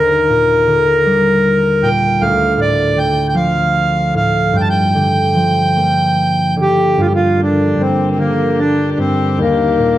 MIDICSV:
0, 0, Header, 1, 4, 480
1, 0, Start_track
1, 0, Key_signature, -2, "minor"
1, 0, Tempo, 766284
1, 1386, Time_signature, 6, 3, 24, 8
1, 2341, Tempo, 813008
1, 4261, Tempo, 793651
1, 6071, End_track
2, 0, Start_track
2, 0, Title_t, "Accordion"
2, 0, Program_c, 0, 21
2, 0, Note_on_c, 0, 70, 84
2, 1148, Note_on_c, 0, 79, 81
2, 1184, Note_off_c, 0, 70, 0
2, 1385, Note_on_c, 0, 77, 74
2, 1393, Note_off_c, 0, 79, 0
2, 1629, Note_off_c, 0, 77, 0
2, 1635, Note_on_c, 0, 74, 73
2, 1868, Note_on_c, 0, 79, 78
2, 1873, Note_off_c, 0, 74, 0
2, 2049, Note_off_c, 0, 79, 0
2, 2059, Note_on_c, 0, 79, 52
2, 2100, Note_off_c, 0, 79, 0
2, 2100, Note_on_c, 0, 77, 68
2, 2582, Note_off_c, 0, 77, 0
2, 2590, Note_on_c, 0, 77, 70
2, 2829, Note_on_c, 0, 79, 66
2, 2830, Note_off_c, 0, 77, 0
2, 2857, Note_on_c, 0, 81, 57
2, 2862, Note_off_c, 0, 79, 0
2, 2900, Note_off_c, 0, 81, 0
2, 2908, Note_on_c, 0, 79, 73
2, 4003, Note_off_c, 0, 79, 0
2, 4039, Note_on_c, 0, 67, 76
2, 4272, Note_on_c, 0, 65, 73
2, 4276, Note_off_c, 0, 67, 0
2, 4300, Note_on_c, 0, 67, 53
2, 4310, Note_off_c, 0, 65, 0
2, 4344, Note_off_c, 0, 67, 0
2, 4359, Note_on_c, 0, 65, 71
2, 4515, Note_off_c, 0, 65, 0
2, 4525, Note_on_c, 0, 62, 58
2, 4756, Note_on_c, 0, 60, 63
2, 4763, Note_off_c, 0, 62, 0
2, 4929, Note_off_c, 0, 60, 0
2, 4938, Note_on_c, 0, 60, 48
2, 4984, Note_off_c, 0, 60, 0
2, 4985, Note_on_c, 0, 58, 66
2, 5229, Note_on_c, 0, 62, 66
2, 5234, Note_off_c, 0, 58, 0
2, 5416, Note_off_c, 0, 62, 0
2, 5426, Note_on_c, 0, 62, 44
2, 5467, Note_off_c, 0, 62, 0
2, 5471, Note_on_c, 0, 60, 64
2, 5714, Note_off_c, 0, 60, 0
2, 5725, Note_on_c, 0, 58, 73
2, 6071, Note_off_c, 0, 58, 0
2, 6071, End_track
3, 0, Start_track
3, 0, Title_t, "String section"
3, 0, Program_c, 1, 48
3, 4249, Note_on_c, 1, 53, 45
3, 4254, Note_on_c, 1, 58, 41
3, 4255, Note_on_c, 1, 67, 53
3, 5685, Note_off_c, 1, 53, 0
3, 5687, Note_off_c, 1, 58, 0
3, 5712, Note_on_c, 1, 62, 42
3, 5717, Note_on_c, 1, 50, 49
3, 6071, Note_off_c, 1, 50, 0
3, 6071, Note_off_c, 1, 62, 0
3, 6071, Note_off_c, 1, 67, 0
3, 6071, End_track
4, 0, Start_track
4, 0, Title_t, "Harp"
4, 0, Program_c, 2, 46
4, 0, Note_on_c, 2, 39, 46
4, 0, Note_on_c, 2, 58, 35
4, 183, Note_on_c, 2, 46, 43
4, 418, Note_on_c, 2, 50, 40
4, 460, Note_off_c, 2, 46, 0
4, 664, Note_on_c, 2, 55, 45
4, 954, Note_off_c, 2, 58, 0
4, 1146, Note_on_c, 2, 46, 47
4, 1181, Note_off_c, 2, 50, 0
4, 1389, Note_on_c, 2, 38, 54
4, 1418, Note_off_c, 2, 39, 0
4, 1418, Note_off_c, 2, 46, 0
4, 1418, Note_off_c, 2, 55, 0
4, 1612, Note_on_c, 2, 45, 40
4, 1852, Note_on_c, 2, 50, 42
4, 1892, Note_off_c, 2, 45, 0
4, 2093, Note_on_c, 2, 53, 48
4, 2581, Note_on_c, 2, 45, 45
4, 2604, Note_off_c, 2, 50, 0
4, 2808, Note_on_c, 2, 43, 49
4, 2845, Note_off_c, 2, 38, 0
4, 2845, Note_off_c, 2, 45, 0
4, 2845, Note_off_c, 2, 53, 0
4, 3056, Note_on_c, 2, 50, 45
4, 3292, Note_on_c, 2, 53, 38
4, 3535, Note_on_c, 2, 58, 42
4, 4003, Note_off_c, 2, 50, 0
4, 4010, Note_on_c, 2, 50, 42
4, 4053, Note_off_c, 2, 53, 0
4, 4247, Note_off_c, 2, 43, 0
4, 4254, Note_on_c, 2, 43, 45
4, 4291, Note_off_c, 2, 50, 0
4, 4493, Note_on_c, 2, 50, 35
4, 4729, Note_off_c, 2, 43, 0
4, 4736, Note_on_c, 2, 43, 36
4, 4973, Note_off_c, 2, 50, 0
4, 4980, Note_on_c, 2, 50, 37
4, 5457, Note_off_c, 2, 43, 0
4, 5462, Note_off_c, 2, 58, 0
4, 5464, Note_on_c, 2, 43, 37
4, 5707, Note_on_c, 2, 39, 46
4, 5736, Note_off_c, 2, 43, 0
4, 5736, Note_off_c, 2, 50, 0
4, 5949, Note_on_c, 2, 46, 43
4, 6071, Note_off_c, 2, 39, 0
4, 6071, Note_off_c, 2, 46, 0
4, 6071, End_track
0, 0, End_of_file